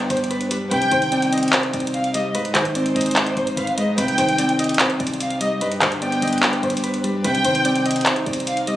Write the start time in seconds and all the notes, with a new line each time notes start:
Already playing: G2 D3 G3 B3 D4 B4 D5
0.10 G1 C5, closed hi-hat
0.17 closed hi-hat
0.24 closed hi-hat
0.30 B4, closed hi-hat
0.41 closed hi-hat
0.51 D2 G3 B4, closed hi-hat
0.61 G1
0.71 C2 C3 G3 D#4 B4 G5, closed hi-hat
0.82 closed hi-hat
0.91 C2 D#3 C5, closed hi-hat
1.02 closed hi-hat
1.12 C4 D5, closed hi-hat
1.22 closed hi-hat
1.33 D#5, closed hi-hat
1.38 closed hi-hat
1.43 closed hi-hat
1.48 closed hi-hat
1.53 C3 C5, clap, closed hi-hat
1.63 closed hi-hat
1.73 C2 D5, closed hi-hat
1.80 closed hi-hat
1.87 closed hi-hat
1.94 F5, closed hi-hat
2.04 closed hi-hat
2.14 G3 D#5, closed hi-hat
2.34 G#2 G#3 D#4 B4 C5, closed hi-hat
2.45 closed hi-hat
2.55 G#1 D#3 C5, clap, closed hi-hat
2.65 closed hi-hat
2.75 C4 C5 D5, closed hi-hat
2.86 closed hi-hat
2.96 G#1 D#5, closed hi-hat, open hi-hat
3.01 closed hi-hat
3.06 closed hi-hat
3.11 closed hi-hat
3.16 G#2 D5, clap, closed hi-hat
3.26 closed hi-hat
3.36 G#1 C5, closed hi-hat
3.47 closed hi-hat
3.57 G#1 B4 F5, closed hi-hat
3.67 closed hi-hat
3.77 G#3 B4 D#5, closed hi-hat
3.98 C2 C3 G3 B4 G5, closed hi-hat
4.08 closed hi-hat
4.18 C2 D#3 C5, closed hi-hat
4.29 closed hi-hat
4.38 C4 D5, closed hi-hat
4.49 closed hi-hat
4.59 D#5, closed hi-hat
4.64 closed hi-hat
4.69 closed hi-hat
4.74 closed hi-hat
4.79 C3 C5, clap, closed hi-hat
4.90 closed hi-hat
5.00 C2 D5, closed hi-hat
5.07 closed hi-hat
5.14 closed hi-hat
5.20 F5, closed hi-hat
5.30 closed hi-hat
5.41 G3 D#5, closed hi-hat
5.61 G2 D4 B4, closed hi-hat
5.72 closed hi-hat
5.81 G1 D3 C5, clap, closed hi-hat
5.92 closed hi-hat
6.02 B3 D5 G5, closed hi-hat
6.12 closed hi-hat
6.22 G1 D#5, closed hi-hat, open hi-hat
6.28 closed hi-hat
6.33 closed hi-hat
6.38 closed hi-hat
6.43 G2 D5, clap, closed hi-hat
6.53 closed hi-hat
6.63 G1 C5, closed hi-hat
6.70 closed hi-hat
6.77 closed hi-hat
6.83 B4, closed hi-hat
6.94 closed hi-hat
7.04 D2 G3 B4, closed hi-hat
7.14 G1
7.24 C2 C3 D#4 B4 G5, closed hi-hat
7.35 closed hi-hat
7.45 C2 D#3 C5, closed hi-hat
7.55 closed hi-hat
7.65 C4 D5, closed hi-hat
7.75 closed hi-hat
7.86 D#5, closed hi-hat
7.91 closed hi-hat
7.96 closed hi-hat
8.01 closed hi-hat
8.06 C3 C5, clap, closed hi-hat
8.16 closed hi-hat
8.26 C2 D5, closed hi-hat
8.33 closed hi-hat
8.40 closed hi-hat
8.47 F5, closed hi-hat
8.57 closed hi-hat
8.67 G3 D#5, closed hi-hat